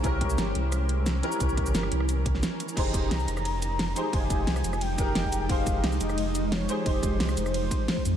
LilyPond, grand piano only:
\new Staff \with { instrumentName = "Grand piano" } { \time 4/4 \key f \minor \tempo 4 = 176 <des' e' g' bes'>2.~ <des' e' g' bes'>8 <des' e' g' bes'>8 | <des' e' g' bes'>2~ <des' e' g' bes'>8 r4. | <ees' g' aes' c''>2.~ <ees' g' aes' c''>8 <ees' g' aes' c''>8 | <ees' f' aes' c''>2~ <ees' f' aes' c''>8 <ees' g' aes' bes'>4. |
<ees' g' aes' c''>2.~ <ees' g' aes' c''>8 <ees' g' aes' c''>8 | <ees' g' aes' c''>2~ <ees' g' aes' c''>8 r4. | }